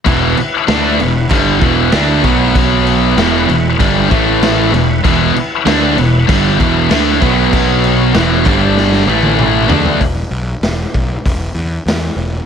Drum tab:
CC |x-x-x-x-x-x-x-x-|x-x-x-x-x-x-x-x-|x-x-x-x-x-x-x-x-|x-x-x-x---------|
HH |----------------|----------------|----------------|----------------|
SD |----o-------o---|----o-------o---|----o-------o---|----o---oo------|
T1 |----------------|----------------|----------------|-----------o----|
T2 |----------------|----------------|----------------|------------o---|
FT |----------------|----------------|----------------|--------------oo|
BD |o-------o-o---o-|o-------o-o-----|o-------o-o---o-|o-----o---------|

CC |----------------|
HH |o---o---o---o---|
SD |----o-------o---|
T1 |----------------|
T2 |----------------|
FT |----------------|
BD |o-----o-o-------|